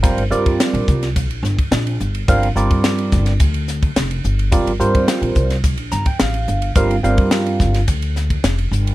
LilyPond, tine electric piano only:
\new Staff \with { instrumentName = "Tine electric piano" } { \time 4/4 \key g \minor \tempo 4 = 107 <g c' f' bes' c''>8 <g c' f' bes' d''>4. r2 | <g c' f' bes' f''>8 <g c' f' bes' d''>4. r2 | <g c' f' bes' d''>8 <g c' f' bes' c''>4. r8 bes''16 g''16 f''4 | <g c' f' bes' f''>8 <g c' f' bes' f''>4. r2 | }